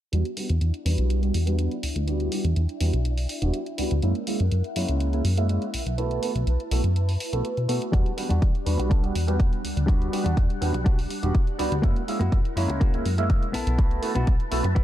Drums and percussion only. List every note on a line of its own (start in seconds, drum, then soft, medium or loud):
0.13 closed hi-hat soft
0.25 closed hi-hat soft
0.37 open hi-hat loud
0.49 closed hi-hat soft
0.61 closed hi-hat medium
0.74 closed hi-hat soft
0.86 open hi-hat loud
0.98 closed hi-hat medium
1.10 closed hi-hat soft
1.23 closed hi-hat soft
1.34 open hi-hat loud
1.47 closed hi-hat soft
1.59 closed hi-hat medium
1.71 closed hi-hat soft
1.83 open hi-hat loud
1.96 closed hi-hat medium
2.08 closed hi-hat soft
2.20 closed hi-hat soft
2.32 open hi-hat loud
2.45 closed hi-hat soft
2.56 closed hi-hat medium
2.69 closed hi-hat soft
2.81 open hi-hat loud
2.93 closed hi-hat soft
3.05 closed hi-hat soft
3.18 open hi-hat medium
3.29 open hi-hat loud
3.42 closed hi-hat soft
3.54 closed hi-hat soft
3.66 closed hi-hat soft
3.78 open hi-hat loud
3.91 closed hi-hat soft
4.03 closed hi-hat soft
4.15 closed hi-hat soft
4.27 open hi-hat loud
4.40 closed hi-hat soft
4.52 closed hi-hat soft
4.64 closed hi-hat soft
4.76 open hi-hat loud
4.88 closed hi-hat soft
5.00 closed hi-hat soft
5.13 closed hi-hat soft
5.25 open hi-hat loud
5.38 closed hi-hat soft
5.49 closed hi-hat soft
5.62 closed hi-hat soft
5.74 open hi-hat loud
5.87 closed hi-hat soft
5.98 closed hi-hat soft
6.11 closed hi-hat soft
6.23 open hi-hat loud
6.36 closed hi-hat soft
6.47 closed hi-hat soft
6.60 closed hi-hat soft
6.71 open hi-hat loud
6.84 closed hi-hat soft
6.96 closed hi-hat soft
7.09 open hi-hat medium
7.20 open hi-hat loud
7.33 closed hi-hat soft
7.45 closed hi-hat soft
7.57 closed hi-hat soft
7.69 open hi-hat loud
7.82 closed hi-hat soft
7.93 kick loud
7.93 closed hi-hat soft
8.06 closed hi-hat soft
8.18 open hi-hat loud
8.30 closed hi-hat soft
8.42 kick loud
8.42 closed hi-hat soft
8.55 closed hi-hat soft
8.66 open hi-hat loud
8.80 closed hi-hat soft
8.91 kick loud
8.91 closed hi-hat soft
9.04 closed hi-hat soft
9.15 open hi-hat loud
9.28 closed hi-hat soft
9.40 kick loud
9.40 closed hi-hat soft
9.53 closed hi-hat soft
9.65 open hi-hat loud
9.65 tambourine medium
9.77 closed hi-hat soft
9.88 kick loud
9.88 closed hi-hat soft
10.02 closed hi-hat soft
10.13 open hi-hat loud
10.26 closed hi-hat soft
10.37 kick loud
10.37 closed hi-hat soft
10.50 closed hi-hat soft
10.62 open hi-hat loud
10.62 tambourine medium
10.74 closed hi-hat soft
10.86 kick loud
10.86 closed hi-hat soft
10.99 open hi-hat medium
11.10 open hi-hat loud
11.10 tambourine medium
11.23 closed hi-hat soft
11.35 kick loud
11.35 closed hi-hat soft
11.47 closed hi-hat soft
11.59 open hi-hat loud
11.72 closed hi-hat medium
11.83 kick loud
11.83 closed hi-hat soft
11.96 closed hi-hat soft
12.08 open hi-hat medium
12.08 tambourine medium
12.21 closed hi-hat soft
12.32 kick loud
12.32 closed hi-hat medium
12.45 closed hi-hat soft
12.57 open hi-hat medium
12.57 tambourine medium
12.70 closed hi-hat medium
12.81 kick loud
12.81 closed hi-hat soft
12.94 closed hi-hat soft
13.05 open hi-hat medium
13.05 tambourine medium
13.18 closed hi-hat soft
13.18 tambourine soft
13.30 kick loud
13.30 closed hi-hat medium
13.42 closed hi-hat soft
13.42 tambourine soft
13.54 open hi-hat loud
13.54 tambourine medium
13.67 closed hi-hat medium
13.79 kick loud
13.79 closed hi-hat medium
13.79 tambourine soft
13.91 closed hi-hat soft
14.03 open hi-hat medium
14.15 closed hi-hat soft
14.15 tambourine soft
14.27 kick loud
14.27 closed hi-hat medium
14.40 closed hi-hat soft
14.40 tambourine soft
14.51 open hi-hat loud
14.51 tambourine medium
14.64 closed hi-hat medium
14.76 kick loud
14.76 closed hi-hat medium
14.76 tambourine soft